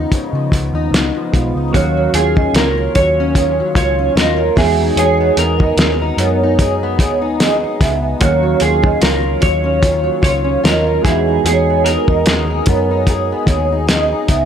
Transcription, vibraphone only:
1.74 2.12 C#5 loud
2.36 2.53 D#5 medium
2.95 3.54 C#5 medium
3.77 3.98 C#5 medium
4.16 4.37 D#5 medium
4.56 4.78 E5 medium
4.96 5.35 C#5 loud
5.59 5.77 D#5 medium
6.19 6.78 C#5 medium
7.00 7.21 C#5 medium
7.41 7.62 D#5 medium
7.81 8.02 E5 medium
8.21 8.60 C#5 loud
8.83 9.01 D#5 medium
9.41 10.01 C#5 medium
10.23 10.45 C#5 medium
10.64 10.86 D#5 medium
11.05 11.26 E5 medium
11.46 11.84 C#5 loud
12.08 12.26 D#5 medium
12.67 13.26 C#5 medium
13.47 13.69 C#5 medium
13.87 14.09 D#5 medium
14.28 14.45 E5 medium

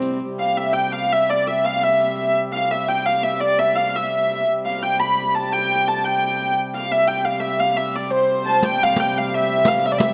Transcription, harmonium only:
0.00 0.19 C3 medium
0.00 0.19 G3 medium
0.20 4.44 C3 medium
0.20 4.43 G3 medium
4.45 8.61 C3 medium
4.45 8.61 G3 medium
8.62 10.14 C3 medium
8.62 10.14 G3 medium

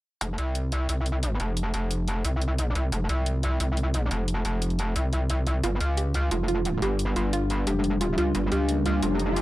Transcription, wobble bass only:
0.21 0.37 F1 loud
0.38 0.88 C2 medium
0.89 1.38 C2 loud
1.40 1.72 F1 loud
1.74 2.23 F1 loud
2.25 2.74 C2 loud
2.75 2.91 C2 medium
2.92 3.08 F1 loud
3.09 3.59 C2 loud
3.60 4.10 C2 medium
4.11 4.44 F1 medium
4.45 4.94 F1 loud
4.96 5.62 C2 medium
5.64 5.79 G1 loud
5.80 6.30 C#2 medium
6.31 6.81 F1 loud
6.82 7.15 G1 loud
7.16 7.66 G1 medium
7.67 8.16 F1 loud
8.18 8.33 C#2 medium
8.35 8.50 G1 loud
8.52 9.01 C#2 loud
9.03 9.42 F1 loud

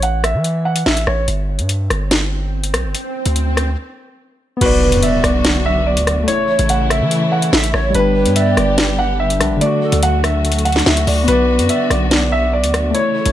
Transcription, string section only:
4.61 6.26 D3 medium
4.61 6.26 F#3 medium
4.61 6.26 B3 medium
4.61 6.26 F#4 medium
6.28 7.93 C#3 medium
6.28 7.93 E3 medium
6.28 7.93 A3 medium
6.28 7.93 E4 medium
7.95 11.25 D3 medium
7.95 9.60 G3 medium
7.95 9.60 B3 medium
7.95 9.60 G4 medium
9.61 11.26 F#3 medium
9.61 11.26 A3 medium
9.61 12.91 F#4 medium
11.28 12.93 D3 medium
11.28 12.93 F#3 medium
11.28 12.93 B3 medium
12.95 13.32 C#3 medium
12.95 13.32 E3 medium
12.95 13.32 A3 medium
12.95 13.32 E4 medium

